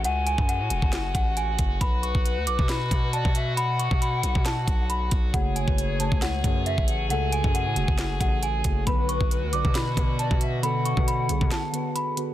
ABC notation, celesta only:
X:1
M:4/4
L:1/8
Q:1/4=136
K:Bdor
V:1 name="Celesta"
f g f3 f g2 | b c' z d' b2 a z | b c' b2 a2 b z | f g z a f2 e z |
f g f3 f g2 | b c' z d' b2 a z | b c' b2 a2 b z |]